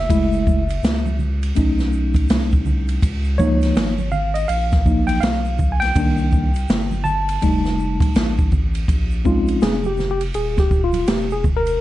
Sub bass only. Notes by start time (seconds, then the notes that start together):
0.10 F#1
0.83 C#2
1.57 B1
2.29 C2
3.03 C#2
3.76 G#1
4.49 A#1
5.22 B1
5.96 C2
6.69 G1
7.43 F1
8.00 A1
8.15 A1
8.88 A#1
9.62 F1
10.34 D#1
11.08 E1